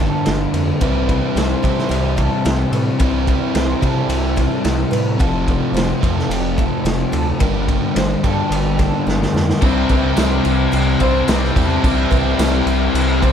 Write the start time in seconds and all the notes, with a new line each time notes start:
Already playing: G1 G2 D3 G3 A#3 D4 G4
0.00 A4, snare
0.26 G1 G4, snare, ride
0.54 F2 A#4, ride
0.81 C2 C3 E3 G3 C4 E4 B4, kick, ride
1.09 kick, ride
1.36 C2 C5, snare, ride
1.62 C3 E3 G3 C4 E4 A4, kick, ride
1.79 snare
1.89 C2 G4, ride
2.17 A4, kick, ride
2.45 C2 G4, snare, ride
2.72 A2 B4, ride
2.99 C2 C3 E3 G3 C4 E4 B4, kick, ride
3.28 kick, ride
3.55 C2 C5, snare, ride
3.81 C3 E3 G3 C4 E4 A4, kick, ride
4.09 C2 G4, ride
4.36 A4, kick, snare, ride
4.64 C2 G4, snare, ride
4.91 A2 B4, ride
5.17 F1 F2 C3 F3 A3 C4 F4 A4, kick, ride
5.48 kick, ride
5.73 F1 C5, ride
5.78 snare
6.01 F2 C3 F3 A3 C4 F4 A4, kick, ride
6.19 snare
6.29 F1 G4, ride
6.58 A4, kick, ride
6.84 F1 G4, snare, ride
7.12 D2 A4, ride
7.39 G1 G2 D3 G3 A#3 D4 G4 A#4, kick, ride
7.68 kick, ride
7.96 G1 C5, snare, ride
8.23 G2 D3 G3 A#3 D4 G4 A4, kick, ride
8.50 G1 G4, ride
8.79 A4, kick, snare, ride
9.07 G1 G4, snare
9.23 snare
9.34 F2 A#4, snare
9.50 snare
9.61 C2 C3 E3 G3 C4 E4, kick, crash
9.89 C2 B4, kick, crash
10.17 C2 G4, snare, tambourine, crash
10.45 C2 G4, crash
10.72 C2 G4, crash
11.00 C2 C3 G3 C4 C5, kick, crash
11.28 C2 C3 G3 C4 B4, snare, tambourine, crash
11.45 snare
11.56 E2 C3 E3 G3 C4 E4 A4, kick, crash
11.83 C2 C3 E3 G3 C4 E4, kick, crash
12.11 C2 B4, kick, crash
12.39 C2 G4, snare, tambourine, crash
12.66 C2 G4, crash
12.94 C2 G4, crash
13.22 C3 G3 C4 C5, kick, crash